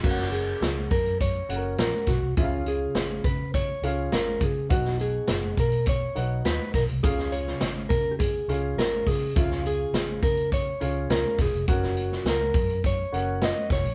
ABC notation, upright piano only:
X:1
M:4/4
L:1/8
Q:1/4=103
K:F#
V:1 name="Upright piano"
[CFAef]3 z2 [CF=A^Af]2 z | [C,CEG=e^e]3 z2 [CEGe]2 z | [B,,DFBf]3 z2 [DFBf]2 z | [C,CEGe]3 z2 [CEGe]2 z |
[C,CEG=e^e]3 z2 [CEGe]2 z | [CFAf]3 z2 [CFAf]2 z |]